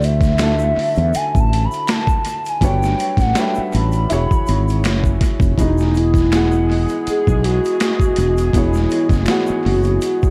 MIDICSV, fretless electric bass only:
0, 0, Header, 1, 3, 480
1, 0, Start_track
1, 0, Key_signature, 4, "major"
1, 0, Tempo, 740741
1, 1693, Time_signature, 4, 2, 24, 8
1, 6676, End_track
2, 0, Start_track
2, 0, Title_t, "Fretless electric bass"
2, 0, Program_c, 0, 35
2, 0, Note_on_c, 0, 38, 95
2, 468, Note_off_c, 0, 38, 0
2, 631, Note_on_c, 0, 40, 86
2, 721, Note_off_c, 0, 40, 0
2, 879, Note_on_c, 0, 33, 75
2, 1077, Note_off_c, 0, 33, 0
2, 1697, Note_on_c, 0, 31, 102
2, 1900, Note_off_c, 0, 31, 0
2, 2060, Note_on_c, 0, 33, 80
2, 2155, Note_off_c, 0, 33, 0
2, 2426, Note_on_c, 0, 33, 88
2, 2625, Note_off_c, 0, 33, 0
2, 2668, Note_on_c, 0, 28, 89
2, 2773, Note_off_c, 0, 28, 0
2, 2908, Note_on_c, 0, 32, 85
2, 3146, Note_off_c, 0, 32, 0
2, 3146, Note_on_c, 0, 30, 65
2, 3345, Note_off_c, 0, 30, 0
2, 3502, Note_on_c, 0, 29, 77
2, 3596, Note_off_c, 0, 29, 0
2, 3619, Note_on_c, 0, 28, 99
2, 4441, Note_off_c, 0, 28, 0
2, 4718, Note_on_c, 0, 35, 84
2, 4917, Note_off_c, 0, 35, 0
2, 5302, Note_on_c, 0, 28, 78
2, 5503, Note_off_c, 0, 28, 0
2, 5535, Note_on_c, 0, 28, 102
2, 5739, Note_off_c, 0, 28, 0
2, 5898, Note_on_c, 0, 30, 94
2, 5994, Note_off_c, 0, 30, 0
2, 6259, Note_on_c, 0, 30, 94
2, 6461, Note_off_c, 0, 30, 0
2, 6676, End_track
3, 0, Start_track
3, 0, Title_t, "Muted fretless electric bass strokes"
3, 499, Note_on_c, 9, 29, 40
3, 563, Note_off_c, 9, 29, 0
3, 744, Note_on_c, 9, 29, 38
3, 809, Note_off_c, 9, 29, 0
3, 2319, Note_on_c, 9, 29, 39
3, 2384, Note_off_c, 9, 29, 0
3, 2797, Note_on_c, 9, 29, 43
3, 2862, Note_off_c, 9, 29, 0
3, 4584, Note_on_c, 9, 29, 42
3, 4649, Note_off_c, 9, 29, 0
3, 6155, Note_on_c, 9, 29, 38
3, 6219, Note_off_c, 9, 29, 0
3, 6632, Note_on_c, 9, 29, 40
3, 6676, Note_off_c, 9, 29, 0
3, 6676, End_track
0, 0, End_of_file